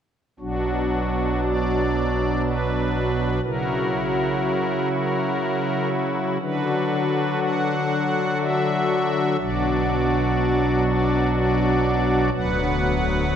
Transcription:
0.39 B1 B2 F#3 D4 F#4
1.44 D5
2.45 B4
3.44 C#3 F#3 E4 F#4 A#4
4.93 A#4
6.41 D3 F#3 D4 F#4 B4
7.41 F#5
8.40 E5
9.39 B1 B2 F#3 D4 F#4 D5
10.87 D5
11.35 D5
12.34 D1 D2 F#3 B3 B4 F#5

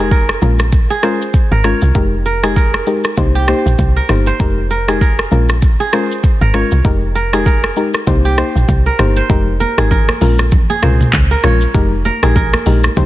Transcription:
Already playing: F1 A#4 C5
0.00 G#3 D#4 G4 G#4 A#4
0.11 A#4, kick, shaker
0.29 cross-stick
0.42 A#1 G#3 C#4 F4 A#4, shaker
0.59 cross-stick, shaker
0.72 kick, shaker
0.90 G#4
1.03 G#3 C#4 F4 A#4 C5, cross-stick, shaker
1.22 shaker
1.34 kick, shaker
1.52 G#1 A#4
1.64 G#3 C#4 F4 A#4 C#5, cross-stick, shaker
1.82 C2, shaker
1.95 F1 G#3 D#4 G4 A#4, kick, shaker
2.26 A#4, shaker
2.43 G#3 D#4 G4 G#4 A#4, cross-stick, shaker
2.56 A#4, kick, shaker
2.74 cross-stick
2.87 G#3 D#4 G4 A#4, shaker
3.04 cross-stick, shaker
3.17 C2 A#3 D#4 G4 C5, kick, shaker
3.35 G4
3.48 A#3 D#4 G4 C5, cross-stick, shaker
3.66 A#1, shaker
3.79 C2, kick, shaker
3.96 A#4
4.09 G1 A#3 D#4 G4 C5, cross-stick, shaker
4.26 C5, shaker
4.40 F1 G#3 D#4 G4 A#4, kick, shaker
4.71 A#4, shaker
4.88 G#3 D#4 G4 G#4 A#4, cross-stick, shaker
5.01 A#4, kick, shaker
5.19 cross-stick
5.31 A#1 G#3 C#4 F4 A#4, shaker
5.49 cross-stick, shaker
5.62 kick, shaker
5.80 G#4
5.93 G#3 C#4 F4 A#4 C5, cross-stick, shaker
6.12 shaker
6.23 kick, shaker
6.41 G#1 A#4
6.54 G#3 C#4 F4 A#4 C#5, cross-stick, shaker
6.71 C2, shaker
6.84 F1 G#3 D#4 G4 A#4, kick, shaker
7.15 A#4, shaker
7.33 G#3 D#4 G4 G#4 A#4, cross-stick, shaker
7.46 A#4, kick, shaker
7.64 cross-stick
7.76 G#3 D#4 G4 A#4, shaker
7.94 cross-stick, shaker
8.07 C2 A#3 D#4 G4 C5, kick, shaker
8.25 G4
8.38 A#3 D#4 G4 C5, cross-stick, shaker
8.56 A#1, shaker
8.68 C2, kick, shaker
8.86 A#4
8.99 G1 A#3 D#4 G4 C5, cross-stick, shaker
9.16 C5, shaker
9.29 F1 G#3 D#4 G4 A#4, kick, low conga, shaker
9.60 A#4, high conga, shaker
9.78 G#1 G#3 D#4 G4 G#4 A#4, cross-stick, shaker
9.91 A#4, kick, low conga, shaker
10.09 cross-stick, high conga
10.21 A#1 G#3 C#4 F4 A#4, open hi-hat, shaker
10.39 cross-stick, high conga, shaker
10.52 kick, low conga, shaker
10.70 G#4, high conga
10.83 C2 G#3 C#4 F4 A#4 C5, cross-stick, mid tom, shaker
11.01 mid tom, high conga, shaker
11.13 C#2, kick, clap, shaker
11.31 A#4
11.44 A#1 G#3 C#4 F4 A#4 C#5, cross-stick, high conga, low conga, shaker
11.61 shaker
11.74 F1 G#3 D#4 G4 A#4, kick, low conga, shaker
12.05 A#4, high conga, shaker
12.23 A#1 G#3 D#4 G4 G#4 A#4, cross-stick, shaker
12.36 A#4, kick, low conga, shaker
12.53 cross-stick, high conga
12.66 A#1 G#3 D#4 G4 A#4, open hi-hat, shaker
12.84 cross-stick, high conga, shaker
12.97 C2 A#3 D#4 G4 C5, kick, low conga, shaker

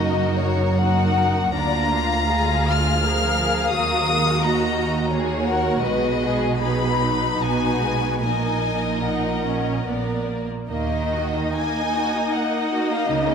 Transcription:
Already playing: F#1 F#2 A#3 D#4 F#4 A#4 D#5
0.39 C#5
0.79 A#3 D#4 F#4 A#4 F#5
1.53 D2 A#3 D4 F4 D5 A#5
1.91 F5
2.28 G#3 F4 G#4
2.67 F4 F6
3.02 F3 G#4 A#4 F5
3.39 G#4
3.72 D#2 F#3 F#4 A#4 D#6
4.09 G#3
4.42 A#3 F#4 D#5 A#5
5.11 A#3 F#4 G#4 C#5
5.45 A#4 F#5
5.82 B1 B2 G#3 B4 D#5
6.21 G#4
6.61 F#3 D#4 G#4 B4 B5
7.00 D#4
7.39 B1 B2 B3 F#4 B4 G#5
7.81 G#3
8.22 A#1 A#2 A#3 D#4 A#4 D#5 G#5
9.05 D#4 F#5
9.46 C#4
9.86 A#1 A#2 B3 A#4 D5
10.28 A#3
10.69 D#2 D#3 A#3 D#4 D#5
10.92 D#4
11.13 F#4
11.35 D#4
11.54 A#3 G#5
11.76 D#4
11.95 F#4
12.15 D#4
12.34 A#3 F#5
12.52 D#4
12.71 F#4
12.90 D#4 F5
13.08 C#2 C#3 A#3 D#5
13.25 C#4

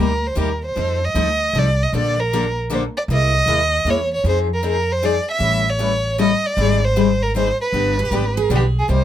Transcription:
0.00 D2 D#4 G4 A#4
0.27 C5
0.35 D#2 C3 G3 A#3 D#4 G4
0.41 A#4
0.65 C5
0.76 F2 F3 C4 D#4 A4
1.04 D#5
1.15 D2 F3 C4 D#4 A4
1.53 C2 F3 C4 D#4 A4
1.58 D5
1.83 D#5
1.93 A#1 D3 F3 A#3 D4 A4 D5
2.20 A#4
2.33 D3 F3 A#3 D4 A4
2.70 D3 F3 A#3 D4 A4 C5
2.97 D5
3.08 C2 C3 G#3 A#3 E4 A#4
3.12 D#5
3.46 D#2 C3 G#3 A#3 E4 A#4
3.85 E2 C3 G#3 A#3 E4 A#4
3.90 C#5
4.14 C#5
4.24 F2 F3 C4 D#4 G#4
4.29 C5
4.54 A#4
4.63 F3 C4 D#4 G#4
4.67 A#4
4.92 C5
5.02 F3 C4 D#4 G#4 D5
5.31 E5
5.39 A1 E3 G3 C#4 E4 A4
5.70 C#5
5.79 E3 G3 C#4 E4 A4
6.18 E3 G3 C#4 E4 A4 D#5
6.46 D5
6.57 G#1 D#3 G3 C4 D#4 G#4
6.85 C5
6.96 D#3 G3 C4 D#4 G#4
7.23 A#4
7.35 D#3 G3 C4 D#4 G#4 C5
7.62 B4
7.72 G1 D3 F3 B3 D4 G4
7.99 G#4
8.05 G4
8.11 G#1 D3 F3 B3 D4 G4
8.37 G#4
8.50 B1 D3 F3 B3 D4 G4 G#4
8.55 G4
8.79 G#4
8.88 C2 C3 G3 A#3 D#4 G4
8.92 C5

